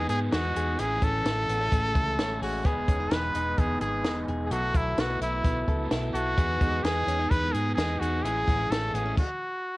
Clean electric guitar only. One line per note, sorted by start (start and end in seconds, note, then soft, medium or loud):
0.00 0.83 B3 medium
0.00 0.32 D#4 medium
0.09 0.56 G#4 medium
0.33 0.84 D#4 medium
0.56 1.30 G#4 medium
0.79 3.03 E3 medium
1.03 1.49 C#4 medium
1.27 1.71 A3 medium
1.50 1.61 B3 medium
1.61 2.18 C#4 soft
1.73 2.65 A3 medium
2.19 2.70 C#4 medium
2.43 2.65 G#4 medium
2.66 3.12 B3 medium
2.66 3.80 G#4 medium
2.89 3.00 C#4 medium
3.00 3.34 D#4 soft
3.12 3.58 B3 medium
3.35 4.05 D#4 medium
3.59 4.98 B3 medium
3.81 4.28 G#4 medium
4.06 4.57 D#4 medium
4.29 4.52 G#4 medium
4.52 6.38 F#3 medium
4.52 5.67 A4 medium
4.75 5.21 E4 medium
4.99 5.44 B3 medium
5.22 5.91 E4 medium
5.44 6.36 B3 medium
5.68 6.13 A4 medium
5.91 6.61 E4 medium
6.15 6.38 A4 medium
6.38 6.83 B3 medium
6.38 7.53 G#4 medium
6.61 7.07 D#4 medium
6.84 7.29 B3 medium
7.08 7.19 C#4 medium
7.19 7.77 D#4 soft
7.31 8.28 B3 medium
7.54 8.00 G#4 medium
7.78 8.29 D#4 medium
8.01 8.24 G#4 medium
8.24 9.22 E3 medium
8.24 9.22 G#4 medium
8.48 8.59 B3 medium
8.59 8.94 C#4 soft
8.71 9.22 A3 medium
8.94 9.06 B3 medium
9.06 9.22 C#4 soft